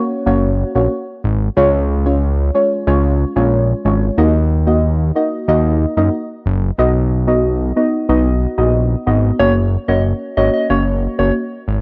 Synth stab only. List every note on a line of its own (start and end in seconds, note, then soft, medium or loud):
0.00 0.24 A#3 medium
0.00 0.24 C#4 medium
0.00 0.24 F#4 medium
0.00 0.24 C#5 medium
0.26 0.71 A#3 loud
0.26 0.71 C#4 medium
0.26 0.71 F#4 medium
0.26 0.72 C#5 loud
0.75 0.88 A#3 medium
0.75 0.88 C#4 medium
0.75 0.89 F#4 medium
0.75 0.89 C#5 medium
1.56 1.70 G#3 loud
1.56 1.70 C#4 medium
1.56 1.70 F4 medium
1.56 1.70 C#5 loud
2.05 2.51 G#3 medium
2.05 2.51 C#4 medium
2.05 2.51 F4 medium
2.05 2.51 C#5 medium
2.54 2.84 G#3 medium
2.54 2.85 C#4 medium
2.54 2.85 F4 medium
2.54 2.85 C#5 medium
2.87 3.32 G#3 loud
2.87 3.32 C#4 medium
2.87 3.32 F4 medium
2.87 3.32 C#5 loud
3.36 3.81 G#3 medium
3.36 3.81 C#4 medium
3.36 3.81 F4 medium
3.36 3.81 C#5 medium
3.85 4.15 G#3 medium
3.85 4.15 C#4 medium
3.85 4.15 F4 medium
3.85 4.15 C#5 medium
4.17 4.31 A#3 medium
4.17 4.31 D#4 medium
4.17 4.31 F#4 medium
4.17 4.31 D#5 loud
4.66 5.12 A#3 medium
4.66 5.12 D#4 medium
4.66 5.12 F#4 medium
4.66 5.12 D#5 medium
5.15 5.45 A#3 medium
5.15 5.46 D#4 medium
5.15 5.46 F#4 medium
5.15 5.46 D#5 medium
5.48 5.93 A#3 loud
5.48 5.93 D#4 medium
5.48 5.93 F#4 medium
5.48 5.93 D#5 loud
5.97 6.10 A#3 medium
5.97 6.10 D#4 medium
5.97 6.10 F#4 medium
5.97 6.10 D#5 medium
6.78 6.92 B3 medium
6.78 6.92 D#4 medium
6.78 6.92 F#4 medium
6.78 6.92 D#5 loud
7.27 7.72 B3 medium
7.27 7.72 D#4 medium
7.27 7.73 F#4 medium
7.27 7.73 D#5 medium
7.76 8.06 B3 medium
7.76 8.06 D#4 medium
7.76 8.06 F#4 medium
7.76 8.07 D#5 medium
8.09 8.54 B3 loud
8.09 8.54 D#4 medium
8.09 8.54 F#4 medium
8.09 8.54 D#5 loud
8.58 9.03 B3 medium
8.58 9.03 D#4 medium
8.58 9.03 F#4 medium
8.58 9.03 D#5 medium
9.06 9.37 B3 medium
9.06 9.37 D#4 medium
9.06 9.37 F#4 medium
9.06 9.37 D#5 medium
9.39 9.52 A#3 medium
9.39 9.53 C#4 medium
9.39 9.53 F#4 medium
9.39 9.53 C#5 loud
9.88 10.33 A#3 medium
9.88 10.33 C#4 medium
9.88 10.33 F#4 medium
9.88 10.34 C#5 medium
10.37 10.67 A#3 medium
10.37 10.67 C#4 medium
10.37 10.67 F#4 medium
10.37 10.67 C#5 medium
10.70 11.15 A#3 loud
10.70 11.15 C#4 medium
10.70 11.15 F#4 medium
10.70 11.15 C#5 loud
11.19 11.32 A#3 medium
11.19 11.32 C#4 medium
11.19 11.32 F#4 medium
11.19 11.32 C#5 medium